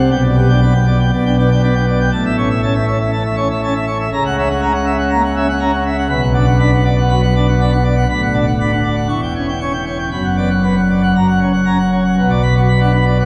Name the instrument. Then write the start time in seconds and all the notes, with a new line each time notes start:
pipe organ
0.10 B1 B2 G5
0.24 D5
0.36 B3 G4
0.49 D4 G5
0.61 B3 D5
0.74 G5
0.87 D5
0.99 G5
1.12 B1 B2 D5
1.26 D4 G5
1.38 B3 D5
1.51 D4 G5
1.63 B3 D5
1.74 G5
1.87 D5
2.00 G5
2.12 A1 A2 A5
2.25 E5
2.38 C#4 C#5
2.50 E5
2.63 C#4 A5
2.74 E5
2.88 C#5
3.00 E5
3.13 E3 A5
3.25 E5
3.37 C#4 C#5
3.51 E5
3.63 C#4 A5
3.75 E5
3.87 C#5
4.00 E5
4.13 C#2 C#3 A#5
4.26 F#5
4.38 C#4 E5
4.50 F#5
4.61 C#4 A#5
4.74 F#5
4.86 E5
4.99 F#5
5.11 A#3 A#5
5.24 F#5
5.36 C#4 E5
5.49 F#5
5.60 C#4 A#5
5.73 F#5
5.86 E5
5.98 F#5
6.09 B1 B2 B5
6.21 F#5
6.34 D4 D5
6.45 F#5
6.59 D4 B5
6.72 F#5
6.85 D5
6.98 F#5
7.09 F#3 B5
7.22 F#5
7.36 D4 D5
7.48 F#5
7.60 D4 B5
7.72 F#5
7.84 D5
7.96 F#5
8.10 D1 D2 B5
8.22 F#5
8.34 D4 D5
8.47 F#5
8.60 D4 B5
8.72 F#5
8.84 D5
8.96 F#5
9.09 E1 E2 C#6
9.22 G5
9.36 C#4 C#5
9.48 G5
9.61 C#4 C#6
9.73 G5
9.86 C#5
9.99 G5
10.11 F#1 F#2 B5
10.24 F#5
10.37 B3 D5
10.50 F#5
10.63 B3 B5
10.77 F#5
10.90 D5
11.03 F#5
11.15 F#1 F#2 A#5
11.28 F#5
11.40 C#4 C#5
11.53 F#5
11.66 C#4 A#5
11.79 F#5
11.92 C#5
12.04 F#5
12.18 B1 B2 F#5
12.30 D5
12.42 B5
12.56 F#4
12.69 B5
12.80 D4 F#5
12.93 B5
13.06 D5
13.19 F#3 F#5